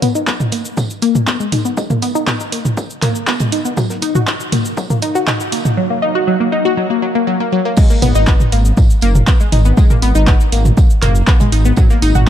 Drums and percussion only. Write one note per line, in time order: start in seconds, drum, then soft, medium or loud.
0.02 mid tom medium
0.02 open hi-hat loud
0.02 tambourine medium
0.15 shaker medium
0.27 kick loud
0.27 snare loud
0.27 clap loud
0.27 tambourine medium
0.27 shaker medium
0.40 mid tom medium
0.40 shaker medium
0.52 open hi-hat loud
0.52 tambourine medium
0.65 shaker medium
0.77 kick loud
0.77 mid tom medium
0.77 tambourine medium
0.77 shaker medium
0.90 shaker medium
1.02 open hi-hat loud
1.02 tambourine medium
1.15 mid tom medium
1.15 shaker medium
1.27 kick loud
1.27 snare loud
1.27 clap loud
1.27 tambourine medium
1.27 shaker medium
1.40 shaker medium
1.52 mid tom medium
1.52 open hi-hat loud
1.52 tambourine medium
1.65 shaker medium
1.77 kick loud
1.77 tambourine medium
1.77 shaker medium
1.90 mid tom medium
1.90 shaker medium
2.02 open hi-hat loud
2.02 tambourine medium
2.15 shaker medium
2.27 kick loud
2.27 snare loud
2.27 clap loud
2.27 mid tom medium
2.27 tambourine medium
2.27 shaker medium
2.40 shaker medium
2.52 open hi-hat loud
2.52 tambourine medium
2.65 mid tom medium
2.65 shaker medium
2.77 kick loud
2.77 tambourine medium
2.77 shaker medium
2.90 shaker medium
3.02 snare medium
3.02 clap medium
3.02 mid tom medium
3.02 open hi-hat loud
3.02 tambourine medium
3.15 shaker medium
3.27 kick loud
3.27 snare loud
3.27 clap loud
3.27 tambourine medium
3.27 shaker medium
3.40 closed hi-hat soft
3.40 mid tom medium
3.40 shaker medium
3.52 open hi-hat loud
3.52 tambourine medium
3.65 shaker medium
3.77 kick loud
3.77 mid tom medium
3.77 tambourine medium
3.77 shaker medium
3.90 snare medium
3.90 shaker medium
4.02 open hi-hat loud
4.02 tambourine medium
4.15 mid tom loud
4.15 shaker medium
4.27 kick loud
4.27 snare loud
4.27 clap loud
4.27 tambourine medium
4.27 shaker medium
4.40 shaker medium
4.52 mid tom medium
4.52 open hi-hat loud
4.52 tambourine medium
4.65 shaker medium
4.77 kick loud
4.77 tambourine medium
4.77 shaker medium
4.90 mid tom medium
4.90 shaker medium
5.02 open hi-hat loud
5.02 tambourine medium
5.15 shaker medium
5.27 kick loud
5.27 snare loud
5.27 clap loud
5.27 mid tom medium
5.27 tambourine medium
5.27 shaker medium
5.40 shaker medium
5.52 open hi-hat loud
5.52 tambourine medium
5.65 mid tom medium
5.65 shaker medium
7.77 kick loud
7.77 crash loud
7.77 tambourine medium
7.77 shaker medium
7.90 snare soft
7.90 shaker medium
8.02 mid tom medium
8.02 open hi-hat loud
8.02 tambourine medium
8.15 shaker medium
8.27 kick loud
8.27 snare loud
8.27 clap loud
8.27 tambourine medium
8.27 shaker medium
8.40 mid tom medium
8.40 shaker medium
8.52 open hi-hat loud
8.52 tambourine medium
8.65 shaker medium
8.77 kick loud
8.77 mid tom medium
8.77 tambourine medium
8.77 shaker medium
8.90 shaker medium
9.01 open hi-hat loud
9.01 tambourine medium
9.15 mid tom medium
9.15 shaker medium
9.27 kick loud
9.27 snare loud
9.27 clap loud
9.27 tambourine medium
9.27 shaker medium
9.40 shaker medium
9.52 mid tom medium
9.52 open hi-hat loud
9.52 tambourine medium
9.65 shaker medium
9.77 kick loud
9.77 tambourine medium
9.77 shaker medium
9.90 mid tom medium
9.90 shaker medium
10.02 open hi-hat loud
10.02 tambourine medium
10.15 shaker medium
10.27 kick loud
10.27 snare loud
10.27 clap loud
10.27 mid tom medium
10.27 tambourine medium
10.27 shaker medium
10.40 shaker medium
10.52 open hi-hat loud
10.52 tambourine medium
10.65 mid tom medium
10.65 shaker medium
10.77 kick loud
10.77 tambourine medium
10.77 shaker medium
10.90 shaker medium
11.02 snare medium
11.02 clap medium
11.02 mid tom medium
11.02 open hi-hat loud
11.02 tambourine medium
11.15 shaker medium
11.27 kick loud
11.27 snare loud
11.27 clap loud
11.27 tambourine medium
11.27 shaker medium
11.40 closed hi-hat soft
11.40 mid tom medium
11.40 shaker medium
11.52 open hi-hat loud
11.52 tambourine medium
11.65 shaker medium
11.76 kick loud
11.76 mid tom medium
11.76 tambourine medium
11.76 shaker medium
11.90 snare medium
11.90 shaker medium
12.02 open hi-hat loud
12.02 tambourine medium
12.15 mid tom loud
12.15 shaker medium